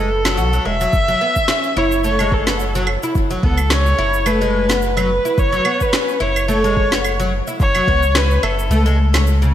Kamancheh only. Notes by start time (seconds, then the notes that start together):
Already playing: A4
0.65 E5
1.78 C#5
2.05 C#5
2.33 A4
3.44 A4
3.71 C#5
4.27 B4
4.83 B4
5.39 C#5
5.82 B4
6.22 C#5
6.50 C#5
7.61 C#5
8.16 B4
8.44 A4